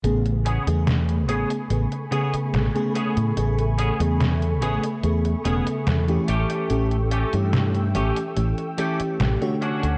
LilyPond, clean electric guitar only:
\new Staff \with { instrumentName = "Clean electric guitar" } { \time 4/4 \key a \major \tempo 4 = 72 r8 <b cis' gis'>16 r8. <b cis' gis'>16 r8. <b cis' gis'>16 r8. <b cis' gis'>16 r16 | r8 <b cis' gis'>16 r8. <b cis' gis'>16 r8. <b cis' gis'>16 r8. <a cis' g'>8~ | <a cis' g'>8 <a cis' g'>16 r8. <a cis' g'>16 r8. <a cis' g'>16 r8. <cis' d' fis'>8 | }